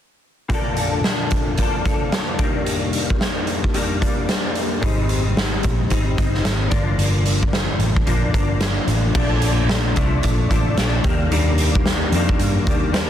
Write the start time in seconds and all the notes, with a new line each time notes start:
0.49 A#2 D3 F3 A#3, kick, closed hi-hat
0.53 D4 A4
0.77 closed hi-hat
1.04 snare, closed hi-hat
1.31 kick, closed hi-hat
1.58 F3 A#3 D4, kick, closed hi-hat
1.62 A4
1.85 F3 A#3 D4 A4, kick, closed hi-hat
2.12 snare, closed hi-hat
2.39 G3 A#3 D4, kick, closed hi-hat
2.44 D#3
2.66 closed hi-hat
2.93 closed hi-hat
3.10 kick
3.21 snare, closed hi-hat
3.47 closed hi-hat
3.64 kick
3.74 D#3 G3 A#3 D4, closed hi-hat
4.01 G3 A#3 D4, kick, closed hi-hat
4.29 snare, closed hi-hat
4.55 closed hi-hat
4.81 G#1 G#2 D#3 G3 C4, kick, closed hi-hat
4.86 D#4
5.09 closed hi-hat
5.37 snare, closed hi-hat
5.63 A#1, kick, closed hi-hat
5.90 G#1 D#3 G3 C4 D#4, kick, closed hi-hat
6.17 G1 G3 C4 D#4, kick, closed hi-hat
6.34 snare
6.45 G#1, snare, closed hi-hat
6.70 G1 D3 F3 A#3 D4, kick, closed hi-hat
6.75 G2
6.98 G1, closed hi-hat
7.26 closed hi-hat
7.43 kick
7.53 snare, closed hi-hat
7.79 A1, closed hi-hat
7.96 kick
8.06 A#1 D3 F3 A#3 D4, kick, closed hi-hat
8.33 G1 F3 A#3 D4, kick, closed hi-hat
8.61 snare, closed hi-hat
8.87 A1, closed hi-hat
9.15 A#1 A#2 F3 A3 D4, kick, crash
9.42 closed hi-hat
9.69 snare, closed hi-hat
9.95 C2 A#2 F3 A3 D4, kick, closed hi-hat
10.23 A#1, kick, closed hi-hat
10.49 A1 A#2 F3 A3 D4, kick, closed hi-hat
10.76 A#1 A#2 F3 A3 D4, snare, closed hi-hat
11.04 D#2 D#3 G3 A#3 D4, kick, closed hi-hat
11.31 D#2 D#3 G3 A#3 D4, closed hi-hat
11.58 closed hi-hat
11.75 kick
11.86 snare, closed hi-hat
12.12 F2 D#3 G3 A#3 D4, closed hi-hat
12.29 kick
12.39 G2, closed hi-hat
12.66 D#2 D#3 G3 A#3 D4, kick, closed hi-hat
12.92 D#3 G3 A#3 D4, snare, closed hi-hat